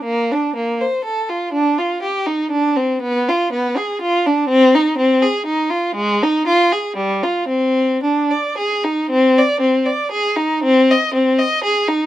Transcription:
\new Staff \with { instrumentName = "Violin" } { \time 3/4 \key c \dorian \tempo 4 = 121 bes8 d'8 bes8 c''8 a'8 f'8 | d'8 f'8 g'8 ees'8 d'8 c'8 | \key c \minor b8 f'8 b8 gis'8 f'8 d'8 | c'8 ees'8 c'8 aes'8 ees'8 f'8 |
aes8 ees'8 f'8 aes'8 g8 f'8 | c'4 d'8 d''8 aes'8 ees'8 | c'8 d''8 c'8 d''8 aes'8 ees'8 | c'8 ees''8 c'8 ees''8 aes'8 ees'8 | }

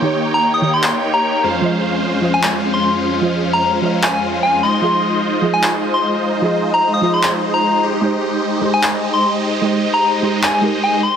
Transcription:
<<
  \new Staff \with { instrumentName = "Soft synth lead" } { \time 4/4 \key f \minor \tempo 4 = 150 r8. bes''8 ees'''16 ees'''16 c'''8 r8 bes''8. r8 | r4. r16 aes''8 r8 c'''8 r8. | r8. bes''8 r8. aes''16 aes''16 r8 aes''8 c'''8~ | c'''4 r8. aes''8 r8 c'''8 r8. |
r8. bes''8 ees'''16 ees'''16 c'''8 r8 bes''8. r8 | r4. r16 aes''8 r8 c'''8 r8. | r8. bes''8 r8. aes''16 aes''16 r8 aes''8 c'''8 | }
  \new Staff \with { instrumentName = "Synth pluck" } { \time 4/4 \key f \minor <ees ees' g' des''>4. <ees ees' g' des''>2 r8 | <f f' c'' ees''>4. <f f' c'' ees''>2~ <f f' c'' ees''>8 | <f f' c'' ees''>4. <f f' c'' ees''>2 r8 | <f f' aes' ees''>4. <f f' aes' ees''>2~ <f f' aes' ees''>8 |
<f f' aes' ees''>4. <f f' aes' ees''>2 r8 | <aes ees' g' c''>4. <aes ees' g' c''>2~ <aes ees' g' c''>8 | <aes ees' g' c''>4. <aes ees' g' c''>4 <aes ees' g' bes'>4. | }
  \new Staff \with { instrumentName = "Supersaw synth" } { \time 4/4 \key f \minor <bes ees' g' des'' g''>2.~ <bes ees' g' des'' g''>8 <f, aes des' f' c'' f''>8~ | <f, aes des' f' c'' f''>1~ | <f, aes des' f' c'' f''>2.~ <f, aes des' f' c'' f''>8 <aes ees' f' c'' ees''>8~ | <aes ees' f' c'' ees''>1~ |
<aes ees' f' c'' ees''>2.~ <aes ees' f' c'' ees''>8 <aes ees' g' c'' ees''>8~ | <aes ees' g' c'' ees''>1~ | <aes ees' g' c'' ees''>2.~ <aes ees' g' c'' ees''>8 r8 | }
  \new DrumStaff \with { instrumentName = "Drums" } \drummode { \time 4/4 r4 r4 hc4 r4 | r4 r4 hc4 r4 | r4 r4 hc4 r4 | r4 r4 hc4 r4 |
r4 r4 hc4 r4 | r4 r4 hc4 r4 | r4 r4 hc4 r4 | }
>>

